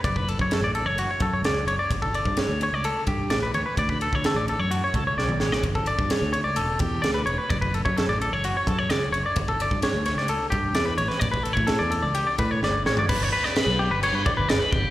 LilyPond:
<<
  \new Staff \with { instrumentName = "Clean electric guitar" } { \time 4/4 \key g \lydian \tempo 4 = 129 d''16 b'16 a'16 cis''16 a'16 d''16 a'16 cis''16 fis'16 cis''16 a'16 cis''16 d''8 cis''16 d''16 | r16 a'16 d''8 cis''8 cis''16 d''16 a'8 g'8 d''16 b'16 cis''16 b'16 | d''16 b'16 a'16 cis''16 a'16 d''16 a'16 cis''16 fis'16 cis''16 a'16 cis''16 d''8 cis''16 d''16 | r16 a'16 d''8 cis''8 cis''16 d''16 a'8 g'8 d''16 b'16 cis''16 b'16 |
d''16 b'16 a'16 cis''16 a'16 d''16 a'16 cis''16 fis'16 cis''16 a'16 cis''16 d''8 cis''16 d''16 | r16 a'16 d''8 cis''8 cis''16 d''16 a'8 g'8 d''16 b'16 cis''16 b'16 | d''16 b'16 a'16 cis''16 a'16 d''16 a'16 d''16 g'16 d''16 b'16 cis''16 d''8 cis''16 d''16 | b'16 cis''16 b'16 d''16 b'8 g'16 b'16 cis''16 b'16 d''16 b'16 d''16 b'16 g'8 | }
  \new Staff \with { instrumentName = "Fingered electric bass" } { \clef bass \time 4/4 \key g \lydian fis,,8. fis,8 a,,8 fis,,8 r16 fis,8 cis,8 fis,,16 r16 | g,,8. g,8 d,8 cis,8 r16 g,8 a,,8 d,16 r16 | d,8. d8 a,,8 fis,8 r16 cis,8 b,,8 a,,8 | g,,8. g,8 d,8 cis,16 e,,8 e,8 d,8 e,,16 r16 |
fis,,8. fis,8 a,,8 fis,,8 r16 fis,8 cis,8 fis,,16 r16 | g,,8. g,8 d,8 cis,8 r16 g,8 e,8 a,,16 r16 | a,,8. a,8 e,8 cis,8 r16 a,8 g,,8 a,,16 r16 | g,,8 r8. b,,8 g,,8 g,16 r16 g,,16 g,,16 r16 g,,8 | }
  \new DrumStaff \with { instrumentName = "Drums" } \drummode { \time 4/4 <bd cymr>16 bd16 cymr16 bd16 <cymr sn>8 cymr8 cymr8 <bd cymr>8 <cymr sn>8 cymr8 | <bd cymr>16 bd16 cymr16 bd16 <cymr sn>8 cymr8 cymr8 <bd cymr>8 <cymr sn>8 cymr8 | <bd cymr>16 bd16 cymr16 bd16 <cymr sn>8 cymr8 cymr8 <bd cymr>8 sn16 toml16 sn16 sn16 | <bd cymr>16 bd16 cymr16 bd16 <cymr sn>8 cymr8 cymr8 <bd cymr>8 <cymr sn>8 cymr8 |
<bd cymr>16 bd16 cymr16 bd16 <cymr sn>8 cymr8 cymr8 <bd cymr>8 <cymr sn>8 cymr8 | <bd cymr>16 bd16 cymr16 bd16 <cymr sn>8 <cymr sn>16 sn16 cymr8 <bd cymr>8 <cymr sn>8 cymr16 sn16 | <bd cymr>16 bd16 cymr16 bd16 <cymr sn>8 cymr8 cymr8 <bd cymr>8 sn8 sn16 tomfh16 | <cymc bd>8. sn16 <cymc sn>4 cymc8 bd8 <cymc sn>8 bd8 | }
>>